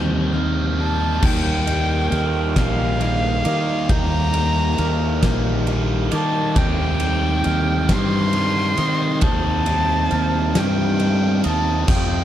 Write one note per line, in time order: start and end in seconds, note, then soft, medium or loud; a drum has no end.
0.00 1.20 D#2 medium
0.00 0.33 D#3 medium
0.00 0.34 D#3 medium
0.00 0.34 G3 loud
0.00 0.34 C4 medium
0.00 1.24 C4 medium
0.00 0.34 D#4 loud
0.00 1.24 D#4 medium
0.00 0.34 G6 medium
0.33 0.77 D#3 medium
0.33 0.78 G3 medium
0.33 0.77 C4 loud
0.33 0.78 D#4 loud
0.33 1.23 F6 medium
0.78 1.20 D#3 medium
0.78 1.21 G3 medium
0.78 1.21 C4 medium
0.78 1.21 D#4 loud
0.78 1.26 A5 medium
1.21 2.08 D#2 medium
1.21 2.57 D#3 medium
1.21 1.68 G3 medium
1.21 1.68 A#3 loud
1.21 1.67 D#4 medium
1.21 2.59 G5 loud
1.21 2.11 G6 loud
1.21 kick loud
1.21 crash loud
1.67 2.57 G3 medium
1.67 2.55 A#3 medium
1.67 2.55 D#4 medium
1.67 ride medium
2.11 2.55 D#2 loud
2.11 3.02 D#3 medium
2.11 3.01 F6 medium
2.11 ride medium
2.56 3.41 A#1 loud
2.56 2.99 D#3 medium
2.56 3.00 G3 medium
2.56 3.00 A#3 loud
2.56 3.01 D#4 loud
2.56 3.93 F5 loud
2.56 kick medium
2.56 snare loud
2.56 ride loud
3.00 3.88 D#3 medium
3.00 3.46 G3 medium
3.00 3.44 A#3 medium
3.00 3.44 D#4 medium
3.00 ride medium
3.45 3.88 D#3 loud
3.45 3.90 G3 medium
3.45 3.89 A#3 medium
3.45 3.91 D#4 medium
3.45 3.90 D6 medium
3.45 ride medium
3.89 4.75 D#2 loud
3.89 5.24 D#3 medium
3.89 4.35 G3 loud
3.89 4.33 A#3 medium
3.89 4.32 D#4 loud
3.89 5.68 A#5 loud
3.89 4.79 G6 loud
3.89 kick loud
3.89 ride loud
4.33 5.23 G3 medium
4.33 5.21 A#3 medium
4.33 5.22 D#4 medium
4.33 ride medium
4.78 5.21 D#2 loud
4.78 5.68 D#3 medium
4.78 5.67 F6 medium
4.78 ride medium
5.22 6.08 A#1 medium
5.22 5.67 D#3 medium
5.22 5.67 G3 medium
5.22 5.67 A#3 medium
5.22 5.68 D#4 medium
5.22 kick medium
5.22 snare loud
5.22 ride loud
5.67 6.55 D#3 medium
5.67 6.13 G3 medium
5.67 6.12 A#3 medium
5.67 6.11 D#4 loud
5.67 ride medium
6.12 6.54 D#3 loud
6.12 6.56 G3 medium
6.12 6.54 A#3 medium
6.12 6.57 D#4 medium
6.12 6.60 A5 loud
6.12 6.56 D6 medium
6.12 ride medium
6.55 7.41 D#2 loud
6.55 7.92 D#3 loud
6.55 7.02 G3 loud
6.55 7.00 C4 loud
6.55 7.00 D#4 loud
6.55 7.93 G5 loud
6.55 7.45 G6 medium
6.55 kick loud
6.55 ride loud
7.00 7.91 G3 medium
7.00 7.90 C4 medium
7.00 7.88 D#4 medium
7.00 ride medium
7.44 7.88 D#2 loud
7.44 8.34 D#3 medium
7.44 8.34 F6 medium
7.44 ride medium
7.89 8.74 G2 loud
7.89 8.33 D#3 medium
7.89 8.34 G3 medium
7.89 8.35 C4 medium
7.89 8.35 D#4 medium
7.89 9.23 C6 loud
7.89 kick medium
7.89 snare loud
7.89 ride loud
8.33 9.22 D#3 medium
8.33 8.81 G3 medium
8.33 8.79 C4 medium
8.33 8.77 D#4 medium
8.33 ride medium
8.77 9.20 D#3 loud
8.77 9.23 G3 medium
8.77 9.24 C4 medium
8.77 9.24 D#4 medium
8.77 9.22 D#6 medium
8.77 ride medium
9.21 10.07 D#2 loud
9.21 10.11 D#3 medium
9.21 9.68 G3 medium
9.21 9.67 C4 loud
9.21 9.66 D#4 loud
9.21 10.60 A5 loud
9.21 10.11 G6 loud
9.21 kick loud
9.21 ride loud
9.66 10.57 G3 medium
9.66 10.56 C4 medium
9.66 10.54 D#4 medium
9.66 ride medium
10.11 10.54 D#2 loud
10.11 10.99 D#3 medium
10.11 11.00 F6 medium
10.11 ride medium
10.55 11.41 G2 loud
10.55 10.98 D#3 medium
10.55 11.00 G3 medium
10.55 11.00 C4 medium
10.55 11.00 D#4 loud
10.55 11.46 G5 loud
10.55 snare loud
10.55 ride loud
10.99 11.85 D#3 medium
10.99 11.46 G3 medium
10.99 11.45 C4 medium
10.99 11.43 D#4 medium
10.99 ride medium
11.44 11.87 D#2 medium
11.44 11.88 G3 medium
11.44 11.88 C4 medium
11.44 11.86 D#4 medium
11.44 11.87 A5 loud
11.44 11.89 D#6 medium
11.44 ride medium
11.88 12.24 F2 loud
11.88 12.24 F3 medium
11.88 12.24 G3 medium
11.88 12.24 C4 loud
11.88 12.24 F4 loud
11.88 12.24 G5 loud
11.88 12.24 G6 loud
11.88 kick loud
11.88 crash loud